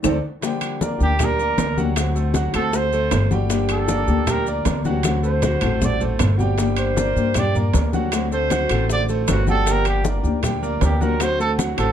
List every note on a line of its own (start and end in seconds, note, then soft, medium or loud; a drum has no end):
0.02 0.19 D2 loud
0.02 0.16 A3 medium
0.02 0.16 C4 medium
0.02 0.15 D4 medium
0.02 0.17 A4 medium
0.02 0.17 C5 medium
0.02 0.17 D5 medium
0.02 low bongo loud
0.02 high conga medium
0.02 high timbale medium
0.02 claves loud
0.02 maracas medium
0.41 0.99 D3 medium
0.41 0.99 F3 medium
0.41 0.74 G3 medium
0.41 0.99 A#3 medium
0.41 0.99 D4 medium
0.41 0.97 G4 medium
0.41 0.74 G4 medium
0.41 0.74 G5 medium
0.41 high bongo medium
0.41 high conga soft
0.41 high timbale medium
0.41 maracas medium
0.61 high bongo soft
0.61 high conga soft
0.61 high timbale medium
0.61 claves medium
0.61 maracas soft
0.81 1.13 A#3 medium
0.81 1.13 A#4 medium
0.81 1.13 D5 medium
0.81 high bongo medium
0.81 high conga medium
0.81 low timbale medium
0.81 maracas medium
0.98 1.54 D2 medium
0.98 1.18 F3 medium
0.98 1.18 A#3 medium
0.98 1.18 D4 medium
0.98 1.18 G4 medium
0.98 high bongo soft
0.98 high conga soft
0.98 maracas soft
1.03 1.25 G4 medium
1.19 1.57 F3 soft
1.19 1.35 G3 medium
1.19 1.57 A#3 medium
1.19 1.57 D4 medium
1.19 1.36 G4 medium
1.19 1.36 G5 medium
1.19 high bongo medium
1.19 high conga soft
1.19 low conga medium
1.19 high timbale medium
1.19 claves medium
1.19 maracas medium
1.24 1.79 A#4 medium
1.39 1.70 A#3 medium
1.39 1.71 A#4 medium
1.39 1.71 D5 medium
1.39 high conga soft
1.39 maracas soft
1.58 2.48 D2 medium
1.58 muted nylon-string guitar stroke medium
1.58 high bongo soft
1.58 low bongo medium
1.58 high conga medium
1.58 high timbale medium
1.58 low timbale medium
1.58 maracas medium
1.77 1.95 F3 medium
1.77 2.09 F#3 medium
1.77 1.96 A#3 medium
1.77 1.96 D4 medium
1.77 2.09 F#4 medium
1.77 1.96 G4 medium
1.77 2.09 F#5 medium
1.77 high bongo soft
1.77 high conga medium
1.77 maracas soft
1.96 2.53 D3 medium
1.96 2.53 A3 medium
1.96 2.52 C4 medium
1.96 2.51 F#4 medium
1.96 high bongo medium
1.96 high conga soft
1.96 high timbale medium
1.96 claves medium
1.96 maracas medium
2.15 2.32 A3 medium
2.15 2.32 A4 medium
2.15 2.32 C5 medium
2.15 high bongo soft
2.15 high conga soft
2.15 maracas soft
2.34 2.51 F#3 medium
2.34 2.51 F#4 medium
2.34 2.51 F#5 medium
2.34 high bongo medium
2.34 high conga medium
2.34 high timbale medium
2.34 low timbale medium
2.34 maracas medium
2.53 3.08 D2 medium
2.53 2.71 A3 medium
2.53 2.86 A3 medium
2.53 2.72 C4 medium
2.53 2.72 F#4 medium
2.53 2.78 A4 medium
2.53 2.87 A4 medium
2.53 2.87 C5 medium
2.53 high bongo soft
2.53 high conga soft
2.53 high timbale medium
2.53 claves medium
2.53 maracas soft
2.72 3.10 D3 medium
2.72 3.10 A3 medium
2.72 3.11 C4 medium
2.72 3.11 F#4 medium
2.72 high bongo medium
2.72 high conga soft
2.72 maracas medium
2.76 3.33 C5 medium
2.93 3.25 A3 medium
2.93 3.25 A4 medium
2.93 3.25 C5 medium
2.93 high conga soft
2.93 maracas soft
3.11 4.02 G1 loud
3.11 muted nylon-string guitar stroke medium
3.11 high bongo soft
3.11 low bongo medium
3.11 high conga medium
3.11 high timbale loud
3.11 low timbale medium
3.11 claves medium
3.11 maracas medium
3.31 3.47 G3 medium
3.31 3.49 A3 medium
3.31 3.50 C4 medium
3.31 3.49 F#4 medium
3.31 3.47 G4 medium
3.31 3.48 G5 medium
3.31 high bongo soft
3.31 high conga medium
3.31 maracas soft
3.49 4.07 D3 medium
3.49 4.07 F3 medium
3.49 3.82 G3 medium
3.49 4.07 A#3 medium
3.49 4.08 D4 medium
3.49 4.07 G4 medium
3.49 3.83 G4 medium
3.49 3.83 G5 medium
3.49 high bongo medium
3.49 high timbale medium
3.49 maracas medium
3.69 4.32 A4 medium
3.69 high bongo soft
3.69 high conga soft
3.69 high timbale medium
3.69 claves medium
3.69 maracas soft
3.88 4.21 A#3 medium
3.88 4.21 G4 medium
3.88 4.21 D5 medium
3.88 high bongo medium
3.88 high conga medium
3.88 low timbale medium
3.88 maracas medium
4.08 4.62 D2 medium
4.08 4.25 F3 medium
4.08 4.26 A#3 medium
4.08 4.26 D4 medium
4.08 4.27 G4 medium
4.08 high bongo soft
4.08 high conga soft
4.08 maracas soft
4.26 4.65 F3 medium
4.26 4.43 G3 medium
4.26 4.65 A#3 medium
4.26 4.65 D4 medium
4.26 4.43 G4 medium
4.26 4.65 G4 medium
4.26 4.43 G5 medium
4.26 high bongo medium
4.26 high conga soft
4.26 low conga medium
4.26 high timbale medium
4.26 claves medium
4.26 maracas medium
4.30 4.48 A#4 medium
4.47 4.78 A#3 medium
4.47 4.78 A#4 medium
4.47 4.79 D5 medium
4.47 high conga soft
4.47 maracas soft
4.65 5.56 D2 loud
4.65 muted nylon-string guitar stroke medium
4.65 high bongo soft
4.65 low bongo medium
4.65 high conga medium
4.65 high timbale medium
4.65 low timbale medium
4.65 maracas medium
4.85 5.04 F3 medium
4.85 5.17 F#3 medium
4.85 5.04 A#3 medium
4.85 5.04 D4 medium
4.85 5.17 F#4 medium
4.85 5.04 G4 medium
4.85 5.17 F#5 medium
4.85 high bongo soft
4.85 high conga medium
4.85 maracas soft
5.03 5.61 D3 medium
5.03 5.62 A3 medium
5.03 5.62 C4 medium
5.03 5.61 F#4 medium
5.03 high bongo medium
5.03 high conga medium
5.03 high timbale medium
5.03 claves medium
5.03 maracas medium
5.23 5.39 A3 medium
5.23 5.39 A4 medium
5.23 5.39 C5 medium
5.23 5.86 C5 medium
5.23 high bongo soft
5.23 maracas soft
5.42 5.58 F#3 medium
5.42 5.59 F#4 medium
5.42 5.59 F#5 medium
5.42 high bongo medium
5.42 low conga medium
5.42 high timbale medium
5.42 low timbale medium
5.42 maracas medium
5.61 6.16 A1 medium
5.61 5.93 A3 medium
5.61 5.81 A3 medium
5.61 5.81 C4 medium
5.61 5.81 F#4 medium
5.61 5.93 A4 medium
5.61 5.94 C5 medium
5.61 high bongo soft
5.61 low conga medium
5.61 high timbale loud
5.61 claves medium
5.61 maracas soft
5.81 6.18 D3 soft
5.81 6.18 A3 medium
5.81 6.18 C4 medium
5.81 6.19 F#4 medium
5.81 6.02 D5 medium
5.81 high bongo medium
5.81 low conga medium
5.81 maracas medium
6.00 6.32 A3 medium
6.00 6.32 A4 medium
6.00 6.32 C5 medium
6.00 low conga medium
6.00 maracas soft
6.19 7.10 G1 loud
6.19 muted nylon-string guitar stroke medium
6.19 high bongo soft
6.19 low bongo medium
6.19 low conga medium
6.19 high timbale loud
6.19 low timbale medium
6.19 claves medium
6.19 maracas medium
6.38 6.55 G3 medium
6.38 6.58 A3 medium
6.38 6.57 C4 medium
6.38 6.57 F#4 medium
6.38 6.55 G4 medium
6.38 6.55 G5 medium
6.38 high bongo soft
6.38 low conga medium
6.38 maracas soft
6.57 7.15 D3 medium
6.57 7.15 F3 medium
6.57 6.90 G3 medium
6.57 7.15 A#3 medium
6.57 7.16 D4 medium
6.57 6.90 G4 medium
6.57 7.14 G4 medium
6.57 6.90 G5 medium
6.57 high bongo medium
6.57 high conga soft
6.57 high timbale medium
6.57 maracas medium
6.77 7.40 C5 medium
6.77 high bongo soft
6.77 high conga soft
6.77 high timbale medium
6.77 claves medium
6.77 maracas soft
6.96 7.28 A#3 medium
6.96 7.29 A#4 medium
6.96 7.29 D5 medium
6.96 high bongo medium
6.96 high conga medium
6.96 low timbale medium
6.96 maracas medium
7.15 7.70 G2 medium
7.15 7.33 F3 soft
7.15 7.34 A#3 medium
7.15 7.35 D4 medium
7.15 7.34 G4 medium
7.15 high bongo soft
7.15 high conga soft
7.15 maracas soft
7.34 7.72 F3 soft
7.34 7.51 G3 medium
7.34 7.73 A#3 medium
7.34 7.73 D4 medium
7.34 7.51 G4 medium
7.34 7.73 G4 medium
7.34 7.56 D5 medium
7.34 7.51 G5 medium
7.34 high bongo medium
7.34 high conga soft
7.34 low conga medium
7.34 high timbale medium
7.34 claves medium
7.34 maracas medium
7.55 7.86 A#3 medium
7.55 7.87 A#4 medium
7.55 7.87 D5 medium
7.55 high conga soft
7.55 low conga medium
7.55 maracas soft
7.73 8.64 D2 loud
7.73 muted nylon-string guitar stroke medium
7.73 high bongo soft
7.73 low bongo medium
7.73 high conga medium
7.73 high timbale medium
7.73 low timbale medium
7.73 maracas medium
7.92 8.12 F3 medium
7.92 8.25 F#3 medium
7.92 8.12 A#3 medium
7.92 8.12 D4 medium
7.92 8.25 F#4 medium
7.92 8.11 G4 medium
7.92 8.26 F#5 medium
7.92 high bongo soft
7.92 high conga medium
7.92 maracas soft
8.12 8.70 D3 medium
8.12 8.70 A3 medium
8.12 8.69 C4 medium
8.12 8.69 F#4 medium
8.12 high bongo medium
8.12 high conga soft
8.12 high timbale medium
8.12 claves medium
8.12 maracas medium
8.32 8.48 A3 medium
8.32 8.48 A4 medium
8.32 8.48 C5 medium
8.32 8.86 C5 medium
8.32 high bongo soft
8.32 high conga soft
8.32 maracas soft
8.50 8.67 F#3 medium
8.50 8.67 F#4 medium
8.50 8.67 F#5 medium
8.50 high bongo medium
8.50 high conga medium
8.50 high timbale medium
8.50 low timbale medium
8.50 maracas medium
8.69 9.24 A1 medium
8.69 9.02 A3 medium
8.69 8.88 A3 medium
8.69 8.89 C4 medium
8.69 8.89 F#4 medium
8.69 9.02 A4 medium
8.69 9.03 C5 medium
8.69 high bongo soft
8.69 high conga soft
8.69 high timbale loud
8.69 claves medium
8.69 maracas soft
8.89 9.27 D3 medium
8.89 9.27 A3 medium
8.89 9.28 C4 medium
8.89 9.28 F#4 medium
8.89 9.03 D5 medium
8.89 high bongo medium
8.89 high conga soft
8.89 maracas medium
9.09 9.40 A3 medium
9.09 9.41 A4 medium
9.09 9.41 C5 medium
9.09 high conga soft
9.09 maracas soft
9.28 10.18 G1 medium
9.28 9.48 F#4 medium
9.28 muted nylon-string guitar stroke medium
9.28 high bongo soft
9.28 low bongo medium
9.28 high conga medium
9.28 high timbale medium
9.28 low timbale medium
9.28 claves medium
9.28 maracas medium
9.47 9.63 G3 medium
9.47 9.66 A3 medium
9.47 9.66 C4 medium
9.47 9.66 F#4 medium
9.47 9.63 G4 medium
9.47 9.73 A4 medium
9.47 9.64 G5 medium
9.47 high bongo soft
9.47 high conga medium
9.47 maracas soft
9.66 10.23 D3 medium
9.66 10.23 F3 medium
9.66 9.99 G3 medium
9.66 10.23 A#3 medium
9.66 10.24 D4 medium
9.66 9.99 G4 medium
9.66 10.22 G4 medium
9.66 9.99 G5 medium
9.66 high bongo medium
9.66 high conga soft
9.66 high timbale medium
9.66 maracas medium
9.71 9.87 A#4 medium
9.85 10.05 G4 medium
9.85 high bongo soft
9.85 high conga soft
9.85 high timbale medium
9.85 claves medium
9.85 maracas soft
10.05 10.37 A#3 medium
10.05 10.37 A#4 medium
10.05 10.37 D5 medium
10.05 high bongo medium
10.05 high conga loud
10.05 low timbale medium
10.05 maracas medium
10.23 10.78 D2 medium
10.23 10.40 F3 medium
10.23 10.41 A#3 medium
10.23 10.42 D4 medium
10.23 10.42 G4 medium
10.23 high bongo soft
10.23 high conga soft
10.23 maracas soft
10.42 10.80 F3 medium
10.42 10.59 G3 medium
10.42 10.80 A#3 medium
10.42 10.81 D4 medium
10.42 10.81 G4 medium
10.42 10.59 G4 medium
10.42 10.60 G5 medium
10.42 high bongo medium
10.42 high conga soft
10.42 low conga medium
10.42 high timbale medium
10.42 claves medium
10.42 maracas medium
10.62 10.94 A#3 medium
10.62 10.94 A#4 medium
10.62 10.95 D5 medium
10.62 high conga soft
10.62 maracas soft
10.81 11.72 D2 medium
10.81 11.01 G4 medium
10.81 muted nylon-string guitar stroke medium
10.81 high bongo soft
10.81 low bongo medium
10.81 high conga medium
10.81 high timbale medium
10.81 low timbale medium
10.81 maracas medium
11.00 11.19 F3 medium
11.00 11.32 F#3 medium
11.00 11.19 A#3 medium
11.00 11.20 D4 medium
11.00 11.32 F#4 medium
11.00 11.19 G4 medium
11.00 11.24 A#4 medium
11.00 11.33 F#5 medium
11.00 high bongo soft
11.00 high conga medium
11.00 maracas soft
11.19 11.77 D3 medium
11.19 11.77 A3 medium
11.19 11.77 C4 medium
11.19 11.76 F#4 medium
11.19 11.40 C5 loud
11.19 high bongo medium
11.19 high conga soft
11.19 high timbale medium
11.19 claves medium
11.19 maracas medium
11.39 11.55 A3 medium
11.39 11.55 A4 medium
11.39 11.52 A4 medium
11.39 11.56 C5 medium
11.39 high bongo soft
11.39 high conga soft
11.39 maracas soft
11.58 11.74 F#3 medium
11.58 11.74 F#4 medium
11.58 11.74 F#5 medium
11.58 high bongo medium
11.58 high conga medium
11.58 high timbale medium
11.58 low timbale medium
11.58 maracas medium
11.77 11.92 A1 medium
11.77 11.92 A3 medium
11.77 11.92 C4 medium
11.77 11.92 F#4 medium
11.77 11.92 A4 medium
11.77 11.92 C5 medium
11.77 high bongo medium
11.77 high conga soft
11.77 high timbale loud
11.77 claves medium
11.77 maracas soft